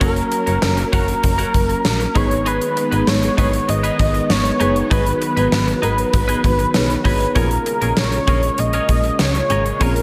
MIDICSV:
0, 0, Header, 1, 8, 480
1, 0, Start_track
1, 0, Tempo, 612245
1, 9, Time_signature, 4, 2, 24, 8
1, 7859, End_track
2, 0, Start_track
2, 0, Title_t, "Analog synth lead"
2, 0, Program_c, 0, 81
2, 16, Note_on_c, 0, 70, 104
2, 701, Note_off_c, 0, 70, 0
2, 735, Note_on_c, 0, 70, 110
2, 1696, Note_on_c, 0, 73, 102
2, 1708, Note_off_c, 0, 70, 0
2, 1936, Note_on_c, 0, 71, 100
2, 1948, Note_off_c, 0, 73, 0
2, 2416, Note_on_c, 0, 73, 94
2, 2428, Note_off_c, 0, 71, 0
2, 2891, Note_off_c, 0, 73, 0
2, 2896, Note_on_c, 0, 75, 108
2, 3375, Note_on_c, 0, 73, 98
2, 3386, Note_off_c, 0, 75, 0
2, 3854, Note_on_c, 0, 71, 104
2, 3866, Note_off_c, 0, 73, 0
2, 4569, Note_off_c, 0, 71, 0
2, 4574, Note_on_c, 0, 71, 110
2, 5500, Note_off_c, 0, 71, 0
2, 5534, Note_on_c, 0, 71, 86
2, 5775, Note_on_c, 0, 70, 96
2, 5786, Note_off_c, 0, 71, 0
2, 6256, Note_on_c, 0, 73, 99
2, 6268, Note_off_c, 0, 70, 0
2, 6735, Note_on_c, 0, 75, 101
2, 6747, Note_off_c, 0, 73, 0
2, 7215, Note_on_c, 0, 73, 98
2, 7227, Note_off_c, 0, 75, 0
2, 7695, Note_on_c, 0, 70, 97
2, 7707, Note_off_c, 0, 73, 0
2, 7859, Note_off_c, 0, 70, 0
2, 7859, End_track
3, 0, Start_track
3, 0, Title_t, "Clean electric guitar"
3, 0, Program_c, 1, 27
3, 4, Note_on_c, 1, 61, 77
3, 12, Note_on_c, 1, 66, 86
3, 19, Note_on_c, 1, 70, 93
3, 108, Note_off_c, 1, 61, 0
3, 112, Note_off_c, 1, 66, 0
3, 116, Note_off_c, 1, 70, 0
3, 364, Note_on_c, 1, 70, 67
3, 373, Note_on_c, 1, 66, 59
3, 379, Note_on_c, 1, 61, 51
3, 446, Note_off_c, 1, 70, 0
3, 451, Note_off_c, 1, 66, 0
3, 454, Note_off_c, 1, 61, 0
3, 725, Note_on_c, 1, 61, 83
3, 732, Note_on_c, 1, 66, 94
3, 739, Note_on_c, 1, 70, 95
3, 829, Note_off_c, 1, 61, 0
3, 832, Note_off_c, 1, 66, 0
3, 836, Note_off_c, 1, 70, 0
3, 1083, Note_on_c, 1, 70, 89
3, 1091, Note_on_c, 1, 66, 81
3, 1098, Note_on_c, 1, 61, 73
3, 1188, Note_off_c, 1, 70, 0
3, 1192, Note_off_c, 1, 66, 0
3, 1195, Note_off_c, 1, 61, 0
3, 1686, Note_on_c, 1, 63, 84
3, 1694, Note_on_c, 1, 68, 83
3, 1701, Note_on_c, 1, 71, 87
3, 1789, Note_off_c, 1, 63, 0
3, 1793, Note_off_c, 1, 68, 0
3, 1797, Note_off_c, 1, 71, 0
3, 1926, Note_on_c, 1, 63, 82
3, 1934, Note_on_c, 1, 68, 87
3, 1940, Note_on_c, 1, 71, 94
3, 2029, Note_off_c, 1, 63, 0
3, 2033, Note_off_c, 1, 68, 0
3, 2036, Note_off_c, 1, 71, 0
3, 2286, Note_on_c, 1, 71, 64
3, 2293, Note_on_c, 1, 68, 54
3, 2300, Note_on_c, 1, 63, 55
3, 2367, Note_off_c, 1, 71, 0
3, 2371, Note_off_c, 1, 68, 0
3, 2374, Note_off_c, 1, 63, 0
3, 2645, Note_on_c, 1, 63, 80
3, 2654, Note_on_c, 1, 68, 92
3, 2660, Note_on_c, 1, 71, 96
3, 2749, Note_off_c, 1, 63, 0
3, 2753, Note_off_c, 1, 68, 0
3, 2756, Note_off_c, 1, 71, 0
3, 3006, Note_on_c, 1, 71, 76
3, 3014, Note_on_c, 1, 68, 66
3, 3020, Note_on_c, 1, 63, 62
3, 3109, Note_off_c, 1, 71, 0
3, 3113, Note_off_c, 1, 68, 0
3, 3116, Note_off_c, 1, 63, 0
3, 3605, Note_on_c, 1, 63, 87
3, 3613, Note_on_c, 1, 68, 91
3, 3620, Note_on_c, 1, 71, 98
3, 3708, Note_off_c, 1, 63, 0
3, 3713, Note_off_c, 1, 68, 0
3, 3716, Note_off_c, 1, 71, 0
3, 3845, Note_on_c, 1, 63, 82
3, 3852, Note_on_c, 1, 68, 83
3, 3860, Note_on_c, 1, 71, 96
3, 3949, Note_off_c, 1, 63, 0
3, 3952, Note_off_c, 1, 68, 0
3, 3956, Note_off_c, 1, 71, 0
3, 4206, Note_on_c, 1, 71, 62
3, 4215, Note_on_c, 1, 68, 54
3, 4221, Note_on_c, 1, 63, 51
3, 4287, Note_off_c, 1, 71, 0
3, 4292, Note_off_c, 1, 68, 0
3, 4295, Note_off_c, 1, 63, 0
3, 4564, Note_on_c, 1, 63, 78
3, 4573, Note_on_c, 1, 68, 83
3, 4578, Note_on_c, 1, 71, 86
3, 4668, Note_off_c, 1, 63, 0
3, 4672, Note_off_c, 1, 68, 0
3, 4675, Note_off_c, 1, 71, 0
3, 4922, Note_on_c, 1, 71, 85
3, 4930, Note_on_c, 1, 68, 74
3, 4937, Note_on_c, 1, 63, 68
3, 5027, Note_off_c, 1, 71, 0
3, 5031, Note_off_c, 1, 68, 0
3, 5035, Note_off_c, 1, 63, 0
3, 5523, Note_on_c, 1, 63, 80
3, 5532, Note_on_c, 1, 68, 91
3, 5538, Note_on_c, 1, 71, 89
3, 5628, Note_off_c, 1, 63, 0
3, 5632, Note_off_c, 1, 68, 0
3, 5635, Note_off_c, 1, 71, 0
3, 5763, Note_on_c, 1, 61, 86
3, 5772, Note_on_c, 1, 68, 98
3, 5778, Note_on_c, 1, 70, 102
3, 5868, Note_off_c, 1, 61, 0
3, 5872, Note_off_c, 1, 68, 0
3, 5875, Note_off_c, 1, 70, 0
3, 6126, Note_on_c, 1, 70, 55
3, 6134, Note_on_c, 1, 68, 56
3, 6141, Note_on_c, 1, 61, 50
3, 6207, Note_off_c, 1, 70, 0
3, 6211, Note_off_c, 1, 68, 0
3, 6215, Note_off_c, 1, 61, 0
3, 6486, Note_on_c, 1, 61, 87
3, 6494, Note_on_c, 1, 68, 89
3, 6501, Note_on_c, 1, 70, 96
3, 6589, Note_off_c, 1, 61, 0
3, 6593, Note_off_c, 1, 68, 0
3, 6597, Note_off_c, 1, 70, 0
3, 6848, Note_on_c, 1, 70, 89
3, 6856, Note_on_c, 1, 68, 76
3, 6863, Note_on_c, 1, 61, 66
3, 6950, Note_off_c, 1, 70, 0
3, 6954, Note_off_c, 1, 68, 0
3, 6958, Note_off_c, 1, 61, 0
3, 7448, Note_on_c, 1, 61, 87
3, 7456, Note_on_c, 1, 68, 85
3, 7463, Note_on_c, 1, 70, 94
3, 7550, Note_off_c, 1, 61, 0
3, 7554, Note_off_c, 1, 68, 0
3, 7558, Note_off_c, 1, 70, 0
3, 7687, Note_on_c, 1, 61, 78
3, 7694, Note_on_c, 1, 68, 91
3, 7702, Note_on_c, 1, 70, 85
3, 7790, Note_off_c, 1, 61, 0
3, 7794, Note_off_c, 1, 68, 0
3, 7797, Note_off_c, 1, 70, 0
3, 7859, End_track
4, 0, Start_track
4, 0, Title_t, "FM electric piano"
4, 0, Program_c, 2, 5
4, 0, Control_c, 2, 64, 127
4, 1, Note_on_c, 2, 58, 67
4, 7, Note_on_c, 2, 61, 61
4, 14, Note_on_c, 2, 66, 62
4, 20, Note_on_c, 2, 70, 72
4, 1654, Note_off_c, 2, 58, 0
4, 1657, Note_off_c, 2, 61, 0
4, 1660, Note_off_c, 2, 66, 0
4, 1663, Note_off_c, 2, 70, 0
4, 1681, Note_on_c, 2, 59, 68
4, 1688, Note_on_c, 2, 63, 62
4, 1695, Note_on_c, 2, 68, 63
4, 1701, Control_c, 2, 64, 0
4, 1701, Note_on_c, 2, 71, 72
4, 1831, Control_c, 2, 64, 127
4, 3574, Note_off_c, 2, 59, 0
4, 3577, Note_off_c, 2, 63, 0
4, 3581, Note_off_c, 2, 68, 0
4, 3584, Note_off_c, 2, 71, 0
4, 3601, Note_on_c, 2, 59, 69
4, 3607, Note_on_c, 2, 63, 62
4, 3614, Note_on_c, 2, 68, 61
4, 3620, Note_on_c, 2, 71, 78
4, 5254, Note_off_c, 2, 59, 0
4, 5257, Note_off_c, 2, 63, 0
4, 5260, Note_off_c, 2, 68, 0
4, 5263, Note_off_c, 2, 71, 0
4, 5285, Note_on_c, 2, 59, 59
4, 5288, Note_on_c, 2, 63, 57
4, 5291, Note_on_c, 2, 68, 59
4, 5294, Note_on_c, 2, 73, 68
4, 5761, Note_on_c, 2, 61, 66
4, 5763, Note_off_c, 2, 68, 0
4, 5766, Note_on_c, 2, 65, 59
4, 5767, Note_off_c, 2, 59, 0
4, 5769, Note_off_c, 2, 63, 0
4, 5772, Note_off_c, 2, 73, 0
4, 5772, Note_on_c, 2, 68, 60
4, 5779, Control_c, 2, 64, 0
4, 5779, Note_on_c, 2, 70, 74
4, 5931, Control_c, 2, 64, 127
4, 7654, Note_off_c, 2, 61, 0
4, 7656, Note_off_c, 2, 65, 0
4, 7660, Note_off_c, 2, 68, 0
4, 7663, Note_off_c, 2, 70, 0
4, 7681, Note_on_c, 2, 60, 55
4, 7687, Note_on_c, 2, 65, 64
4, 7693, Note_on_c, 2, 68, 61
4, 7699, Note_on_c, 2, 70, 74
4, 7732, Note_on_c, 2, 61, 65
4, 7736, Note_off_c, 2, 60, 0
4, 7859, Note_off_c, 2, 61, 0
4, 7859, Note_off_c, 2, 65, 0
4, 7859, Note_off_c, 2, 68, 0
4, 7859, Note_off_c, 2, 70, 0
4, 7859, End_track
5, 0, Start_track
5, 0, Title_t, "String machine"
5, 0, Program_c, 3, 50
5, 0, Note_on_c, 3, 54, 79
5, 0, Note_on_c, 3, 58, 79
5, 0, Note_on_c, 3, 61, 88
5, 1657, Note_off_c, 3, 58, 0
5, 1658, Note_off_c, 3, 54, 0
5, 1658, Note_off_c, 3, 61, 0
5, 1685, Note_on_c, 3, 56, 71
5, 1686, Note_on_c, 3, 51, 73
5, 1686, Note_on_c, 3, 59, 84
5, 3588, Note_off_c, 3, 56, 0
5, 3609, Note_on_c, 3, 54, 68
5, 5736, Note_off_c, 3, 59, 0
5, 5737, Note_off_c, 3, 51, 0
5, 5748, Note_off_c, 3, 54, 0
5, 5767, Note_on_c, 3, 46, 89
5, 5767, Note_on_c, 3, 49, 82
5, 5767, Note_on_c, 3, 56, 77
5, 7859, Note_off_c, 3, 46, 0
5, 7859, Note_off_c, 3, 49, 0
5, 7859, Note_off_c, 3, 56, 0
5, 7859, End_track
6, 0, Start_track
6, 0, Title_t, "FM bass"
6, 0, Program_c, 4, 39
6, 8, Note_on_c, 4, 30, 117
6, 182, Note_off_c, 4, 30, 0
6, 371, Note_on_c, 4, 30, 101
6, 457, Note_off_c, 4, 30, 0
6, 491, Note_on_c, 4, 30, 118
6, 663, Note_off_c, 4, 30, 0
6, 729, Note_on_c, 4, 30, 96
6, 902, Note_off_c, 4, 30, 0
6, 971, Note_on_c, 4, 30, 105
6, 1143, Note_off_c, 4, 30, 0
6, 1210, Note_on_c, 4, 30, 102
6, 1383, Note_off_c, 4, 30, 0
6, 1452, Note_on_c, 4, 34, 96
6, 1624, Note_off_c, 4, 34, 0
6, 1691, Note_on_c, 4, 32, 96
6, 2036, Note_off_c, 4, 32, 0
6, 2292, Note_on_c, 4, 32, 93
6, 2378, Note_off_c, 4, 32, 0
6, 2412, Note_on_c, 4, 32, 108
6, 2584, Note_off_c, 4, 32, 0
6, 2651, Note_on_c, 4, 32, 101
6, 2823, Note_off_c, 4, 32, 0
6, 2891, Note_on_c, 4, 32, 104
6, 3063, Note_off_c, 4, 32, 0
6, 3132, Note_on_c, 4, 32, 102
6, 3304, Note_off_c, 4, 32, 0
6, 3371, Note_on_c, 4, 32, 89
6, 3543, Note_off_c, 4, 32, 0
6, 3611, Note_on_c, 4, 30, 90
6, 3783, Note_off_c, 4, 30, 0
6, 3850, Note_on_c, 4, 32, 117
6, 4023, Note_off_c, 4, 32, 0
6, 4210, Note_on_c, 4, 32, 94
6, 4296, Note_off_c, 4, 32, 0
6, 4330, Note_on_c, 4, 32, 109
6, 4503, Note_off_c, 4, 32, 0
6, 4570, Note_on_c, 4, 32, 92
6, 4743, Note_off_c, 4, 32, 0
6, 4811, Note_on_c, 4, 32, 92
6, 4983, Note_off_c, 4, 32, 0
6, 5050, Note_on_c, 4, 32, 105
6, 5222, Note_off_c, 4, 32, 0
6, 5291, Note_on_c, 4, 35, 100
6, 5463, Note_off_c, 4, 35, 0
6, 5528, Note_on_c, 4, 32, 94
6, 5702, Note_off_c, 4, 32, 0
6, 5769, Note_on_c, 4, 34, 119
6, 5942, Note_off_c, 4, 34, 0
6, 6131, Note_on_c, 4, 34, 91
6, 6217, Note_off_c, 4, 34, 0
6, 6251, Note_on_c, 4, 34, 106
6, 6423, Note_off_c, 4, 34, 0
6, 6489, Note_on_c, 4, 34, 91
6, 6662, Note_off_c, 4, 34, 0
6, 6731, Note_on_c, 4, 34, 95
6, 6903, Note_off_c, 4, 34, 0
6, 6969, Note_on_c, 4, 34, 90
6, 7142, Note_off_c, 4, 34, 0
6, 7210, Note_on_c, 4, 37, 88
6, 7383, Note_off_c, 4, 37, 0
6, 7449, Note_on_c, 4, 32, 89
6, 7622, Note_off_c, 4, 32, 0
6, 7690, Note_on_c, 4, 34, 126
6, 7859, Note_off_c, 4, 34, 0
6, 7859, End_track
7, 0, Start_track
7, 0, Title_t, "Muted clean electric guitar strokes"
7, 125, Note_on_c, 9, 29, 38
7, 204, Note_off_c, 9, 29, 0
7, 248, Note_on_c, 9, 29, 40
7, 326, Note_off_c, 9, 29, 0
7, 485, Note_on_c, 9, 29, 43
7, 564, Note_off_c, 9, 29, 0
7, 605, Note_on_c, 9, 29, 51
7, 684, Note_off_c, 9, 29, 0
7, 846, Note_on_c, 9, 29, 45
7, 924, Note_off_c, 9, 29, 0
7, 964, Note_on_c, 9, 29, 46
7, 1043, Note_off_c, 9, 29, 0
7, 1205, Note_on_c, 9, 29, 50
7, 1284, Note_off_c, 9, 29, 0
7, 1326, Note_on_c, 9, 29, 45
7, 1404, Note_off_c, 9, 29, 0
7, 1567, Note_on_c, 9, 29, 48
7, 1645, Note_off_c, 9, 29, 0
7, 1808, Note_on_c, 9, 29, 52
7, 1886, Note_off_c, 9, 29, 0
7, 2047, Note_on_c, 9, 29, 53
7, 2125, Note_off_c, 9, 29, 0
7, 2167, Note_on_c, 9, 29, 39
7, 2246, Note_off_c, 9, 29, 0
7, 2407, Note_on_c, 9, 29, 46
7, 2485, Note_off_c, 9, 29, 0
7, 2528, Note_on_c, 9, 29, 54
7, 2607, Note_off_c, 9, 29, 0
7, 2767, Note_on_c, 9, 29, 47
7, 2846, Note_off_c, 9, 29, 0
7, 2888, Note_on_c, 9, 29, 50
7, 2966, Note_off_c, 9, 29, 0
7, 3128, Note_on_c, 9, 29, 34
7, 3206, Note_off_c, 9, 29, 0
7, 3247, Note_on_c, 9, 29, 46
7, 3325, Note_off_c, 9, 29, 0
7, 3488, Note_on_c, 9, 29, 46
7, 3566, Note_off_c, 9, 29, 0
7, 3727, Note_on_c, 9, 29, 58
7, 3805, Note_off_c, 9, 29, 0
7, 3968, Note_on_c, 9, 29, 44
7, 4046, Note_off_c, 9, 29, 0
7, 4087, Note_on_c, 9, 29, 38
7, 4166, Note_off_c, 9, 29, 0
7, 4327, Note_on_c, 9, 29, 35
7, 4406, Note_off_c, 9, 29, 0
7, 4447, Note_on_c, 9, 29, 50
7, 4525, Note_off_c, 9, 29, 0
7, 4685, Note_on_c, 9, 29, 40
7, 4763, Note_off_c, 9, 29, 0
7, 4804, Note_on_c, 9, 29, 40
7, 4883, Note_off_c, 9, 29, 0
7, 5043, Note_on_c, 9, 29, 49
7, 5121, Note_off_c, 9, 29, 0
7, 5164, Note_on_c, 9, 29, 48
7, 5242, Note_off_c, 9, 29, 0
7, 5405, Note_on_c, 9, 29, 49
7, 5484, Note_off_c, 9, 29, 0
7, 5645, Note_on_c, 9, 29, 56
7, 5723, Note_off_c, 9, 29, 0
7, 5886, Note_on_c, 9, 29, 39
7, 5964, Note_off_c, 9, 29, 0
7, 6006, Note_on_c, 9, 29, 39
7, 6085, Note_off_c, 9, 29, 0
7, 6248, Note_on_c, 9, 29, 45
7, 6326, Note_off_c, 9, 29, 0
7, 6369, Note_on_c, 9, 29, 40
7, 6447, Note_off_c, 9, 29, 0
7, 6610, Note_on_c, 9, 29, 44
7, 6688, Note_off_c, 9, 29, 0
7, 6730, Note_on_c, 9, 29, 42
7, 6808, Note_off_c, 9, 29, 0
7, 6970, Note_on_c, 9, 29, 47
7, 7048, Note_off_c, 9, 29, 0
7, 7089, Note_on_c, 9, 29, 40
7, 7168, Note_off_c, 9, 29, 0
7, 7330, Note_on_c, 9, 29, 46
7, 7408, Note_off_c, 9, 29, 0
7, 7570, Note_on_c, 9, 29, 52
7, 7648, Note_off_c, 9, 29, 0
7, 7808, Note_on_c, 9, 29, 39
7, 7859, Note_off_c, 9, 29, 0
7, 7859, End_track
8, 0, Start_track
8, 0, Title_t, "Drums"
8, 9, Note_on_c, 9, 36, 110
8, 9, Note_on_c, 9, 42, 91
8, 87, Note_off_c, 9, 36, 0
8, 87, Note_off_c, 9, 42, 0
8, 128, Note_on_c, 9, 42, 59
8, 206, Note_off_c, 9, 42, 0
8, 248, Note_on_c, 9, 42, 84
8, 326, Note_off_c, 9, 42, 0
8, 368, Note_on_c, 9, 42, 61
8, 446, Note_off_c, 9, 42, 0
8, 487, Note_on_c, 9, 38, 116
8, 488, Note_on_c, 9, 54, 67
8, 565, Note_off_c, 9, 38, 0
8, 567, Note_off_c, 9, 54, 0
8, 607, Note_on_c, 9, 42, 54
8, 685, Note_off_c, 9, 42, 0
8, 729, Note_on_c, 9, 36, 95
8, 729, Note_on_c, 9, 42, 67
8, 807, Note_off_c, 9, 36, 0
8, 807, Note_off_c, 9, 42, 0
8, 848, Note_on_c, 9, 42, 58
8, 926, Note_off_c, 9, 42, 0
8, 968, Note_on_c, 9, 42, 98
8, 970, Note_on_c, 9, 36, 92
8, 1046, Note_off_c, 9, 42, 0
8, 1048, Note_off_c, 9, 36, 0
8, 1087, Note_on_c, 9, 42, 68
8, 1165, Note_off_c, 9, 42, 0
8, 1210, Note_on_c, 9, 36, 88
8, 1210, Note_on_c, 9, 42, 75
8, 1289, Note_off_c, 9, 36, 0
8, 1289, Note_off_c, 9, 42, 0
8, 1328, Note_on_c, 9, 42, 43
8, 1407, Note_off_c, 9, 42, 0
8, 1449, Note_on_c, 9, 38, 103
8, 1451, Note_on_c, 9, 54, 64
8, 1528, Note_off_c, 9, 38, 0
8, 1530, Note_off_c, 9, 54, 0
8, 1571, Note_on_c, 9, 42, 53
8, 1649, Note_off_c, 9, 42, 0
8, 1688, Note_on_c, 9, 42, 74
8, 1690, Note_on_c, 9, 36, 104
8, 1767, Note_off_c, 9, 42, 0
8, 1768, Note_off_c, 9, 36, 0
8, 1811, Note_on_c, 9, 42, 53
8, 1890, Note_off_c, 9, 42, 0
8, 1930, Note_on_c, 9, 42, 86
8, 2008, Note_off_c, 9, 42, 0
8, 2050, Note_on_c, 9, 42, 59
8, 2128, Note_off_c, 9, 42, 0
8, 2171, Note_on_c, 9, 42, 85
8, 2249, Note_off_c, 9, 42, 0
8, 2291, Note_on_c, 9, 42, 58
8, 2370, Note_off_c, 9, 42, 0
8, 2410, Note_on_c, 9, 38, 115
8, 2411, Note_on_c, 9, 54, 66
8, 2488, Note_off_c, 9, 38, 0
8, 2490, Note_off_c, 9, 54, 0
8, 2530, Note_on_c, 9, 42, 54
8, 2609, Note_off_c, 9, 42, 0
8, 2650, Note_on_c, 9, 36, 95
8, 2652, Note_on_c, 9, 42, 66
8, 2729, Note_off_c, 9, 36, 0
8, 2730, Note_off_c, 9, 42, 0
8, 2771, Note_on_c, 9, 42, 58
8, 2849, Note_off_c, 9, 42, 0
8, 2890, Note_on_c, 9, 42, 98
8, 2969, Note_off_c, 9, 42, 0
8, 3009, Note_on_c, 9, 42, 66
8, 3087, Note_off_c, 9, 42, 0
8, 3131, Note_on_c, 9, 36, 85
8, 3132, Note_on_c, 9, 42, 72
8, 3210, Note_off_c, 9, 36, 0
8, 3211, Note_off_c, 9, 42, 0
8, 3249, Note_on_c, 9, 42, 45
8, 3328, Note_off_c, 9, 42, 0
8, 3370, Note_on_c, 9, 38, 102
8, 3373, Note_on_c, 9, 54, 70
8, 3449, Note_off_c, 9, 38, 0
8, 3451, Note_off_c, 9, 54, 0
8, 3491, Note_on_c, 9, 42, 53
8, 3570, Note_off_c, 9, 42, 0
8, 3610, Note_on_c, 9, 42, 74
8, 3688, Note_off_c, 9, 42, 0
8, 3732, Note_on_c, 9, 42, 50
8, 3810, Note_off_c, 9, 42, 0
8, 3850, Note_on_c, 9, 36, 114
8, 3851, Note_on_c, 9, 42, 84
8, 3929, Note_off_c, 9, 36, 0
8, 3929, Note_off_c, 9, 42, 0
8, 3970, Note_on_c, 9, 42, 59
8, 4049, Note_off_c, 9, 42, 0
8, 4089, Note_on_c, 9, 42, 79
8, 4168, Note_off_c, 9, 42, 0
8, 4211, Note_on_c, 9, 42, 63
8, 4289, Note_off_c, 9, 42, 0
8, 4330, Note_on_c, 9, 38, 111
8, 4331, Note_on_c, 9, 54, 65
8, 4408, Note_off_c, 9, 38, 0
8, 4410, Note_off_c, 9, 54, 0
8, 4451, Note_on_c, 9, 42, 55
8, 4529, Note_off_c, 9, 42, 0
8, 4571, Note_on_c, 9, 42, 62
8, 4649, Note_off_c, 9, 42, 0
8, 4689, Note_on_c, 9, 42, 57
8, 4768, Note_off_c, 9, 42, 0
8, 4809, Note_on_c, 9, 42, 92
8, 4810, Note_on_c, 9, 36, 93
8, 4888, Note_off_c, 9, 42, 0
8, 4889, Note_off_c, 9, 36, 0
8, 4928, Note_on_c, 9, 42, 66
8, 5007, Note_off_c, 9, 42, 0
8, 5050, Note_on_c, 9, 36, 85
8, 5052, Note_on_c, 9, 42, 73
8, 5128, Note_off_c, 9, 36, 0
8, 5130, Note_off_c, 9, 42, 0
8, 5167, Note_on_c, 9, 42, 44
8, 5245, Note_off_c, 9, 42, 0
8, 5286, Note_on_c, 9, 38, 111
8, 5288, Note_on_c, 9, 54, 69
8, 5365, Note_off_c, 9, 38, 0
8, 5367, Note_off_c, 9, 54, 0
8, 5409, Note_on_c, 9, 42, 50
8, 5487, Note_off_c, 9, 42, 0
8, 5527, Note_on_c, 9, 36, 93
8, 5527, Note_on_c, 9, 46, 74
8, 5605, Note_off_c, 9, 46, 0
8, 5606, Note_off_c, 9, 36, 0
8, 5649, Note_on_c, 9, 42, 51
8, 5728, Note_off_c, 9, 42, 0
8, 5767, Note_on_c, 9, 42, 87
8, 5768, Note_on_c, 9, 36, 112
8, 5845, Note_off_c, 9, 42, 0
8, 5847, Note_off_c, 9, 36, 0
8, 5887, Note_on_c, 9, 42, 58
8, 5965, Note_off_c, 9, 42, 0
8, 6006, Note_on_c, 9, 42, 82
8, 6085, Note_off_c, 9, 42, 0
8, 6128, Note_on_c, 9, 42, 60
8, 6206, Note_off_c, 9, 42, 0
8, 6246, Note_on_c, 9, 38, 116
8, 6247, Note_on_c, 9, 54, 62
8, 6324, Note_off_c, 9, 38, 0
8, 6326, Note_off_c, 9, 54, 0
8, 6367, Note_on_c, 9, 42, 55
8, 6445, Note_off_c, 9, 42, 0
8, 6487, Note_on_c, 9, 42, 63
8, 6488, Note_on_c, 9, 36, 98
8, 6566, Note_off_c, 9, 42, 0
8, 6567, Note_off_c, 9, 36, 0
8, 6607, Note_on_c, 9, 42, 57
8, 6686, Note_off_c, 9, 42, 0
8, 6726, Note_on_c, 9, 42, 98
8, 6805, Note_off_c, 9, 42, 0
8, 6845, Note_on_c, 9, 42, 69
8, 6923, Note_off_c, 9, 42, 0
8, 6967, Note_on_c, 9, 42, 68
8, 6969, Note_on_c, 9, 36, 86
8, 7046, Note_off_c, 9, 42, 0
8, 7047, Note_off_c, 9, 36, 0
8, 7084, Note_on_c, 9, 42, 42
8, 7162, Note_off_c, 9, 42, 0
8, 7206, Note_on_c, 9, 38, 105
8, 7208, Note_on_c, 9, 54, 68
8, 7284, Note_off_c, 9, 38, 0
8, 7286, Note_off_c, 9, 54, 0
8, 7329, Note_on_c, 9, 42, 52
8, 7407, Note_off_c, 9, 42, 0
8, 7447, Note_on_c, 9, 42, 72
8, 7526, Note_off_c, 9, 42, 0
8, 7571, Note_on_c, 9, 42, 51
8, 7649, Note_off_c, 9, 42, 0
8, 7689, Note_on_c, 9, 36, 107
8, 7689, Note_on_c, 9, 42, 89
8, 7767, Note_off_c, 9, 42, 0
8, 7768, Note_off_c, 9, 36, 0
8, 7809, Note_on_c, 9, 42, 59
8, 7859, Note_off_c, 9, 42, 0
8, 7859, End_track
0, 0, End_of_file